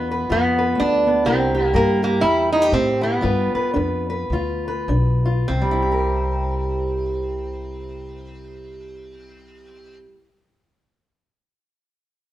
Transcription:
Already playing: E2 B3 D4 F4 B4
0.11 B4
0.29 F2 D3 B3 F4
0.59 B4
0.75 A3
0.80 D2 D4
1.07 B3
1.25 C2 C3 C4 E4 G4 A#4
1.55 G4
1.73 G2 G3 A#3 A#4
2.03 A#3 G4
2.20 E2 C3 G3 E4
2.52 D#4 E4
2.62 G4
2.70 A2 G3 C4
3.01 B3 E4
3.21 G2 G3 F4 B4
3.55 B4, muted upright bass stroke
3.74 F2 D4 B4
4.10 B4
4.30 D2 D3 F4
4.68 B4
4.88 B1 D4
5.25 F4
5.48 C2 C3 C4
5.62 G3
5.71 E4
5.82 G4
5.92 A#4

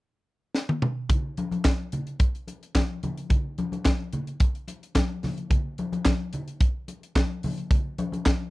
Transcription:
0.55 snare
0.69 high tom
0.82 mid tom
1.09 kick, closed hi-hat, muted conga, low conga
1.37 closed hi-hat, high conga
1.51 closed hi-hat, high conga
1.65 kick, snare, clap, closed hi-hat, high conga
1.92 closed hi-hat, muted conga, low conga
2.07 closed hi-hat
2.19 kick, closed hi-hat, muted conga
2.35 closed hi-hat
2.48 closed hi-hat, muted conga
2.63 closed hi-hat
2.75 kick, snare, clap, closed hi-hat, muted conga, high conga
3.03 closed hi-hat, muted conga, high conga, low conga
3.17 closed hi-hat
3.30 kick, closed hi-hat, muted conga, low conga
3.58 closed hi-hat, muted conga, high conga
3.72 closed hi-hat, high conga
3.85 kick, snare, clap, closed hi-hat, high conga
4.13 closed hi-hat, muted conga, low conga
4.27 closed hi-hat
4.40 kick, closed hi-hat, muted conga
4.55 closed hi-hat
4.68 closed hi-hat, muted conga
4.83 closed hi-hat
4.95 kick, snare, clap, closed hi-hat, muted conga, high conga
5.23 snare, open hi-hat, muted conga, high conga, low conga
5.38 closed hi-hat
5.50 kick, closed hi-hat, muted conga, low conga
5.78 closed hi-hat, high conga
5.92 closed hi-hat, high conga
6.05 kick, snare, clap, closed hi-hat, muted conga, high conga
6.33 closed hi-hat, muted conga, low conga
6.48 closed hi-hat
6.60 kick, closed hi-hat, muted conga
6.88 closed hi-hat, muted conga
7.03 closed hi-hat
7.15 kick, snare, clap, closed hi-hat, muted conga, high conga
7.43 open hi-hat, high conga, low conga
7.58 closed hi-hat
7.71 kick, closed hi-hat, low conga
7.98 closed hi-hat, muted conga, high conga
8.12 closed hi-hat, high conga
8.26 kick, snare, clap, closed hi-hat, muted conga, high conga

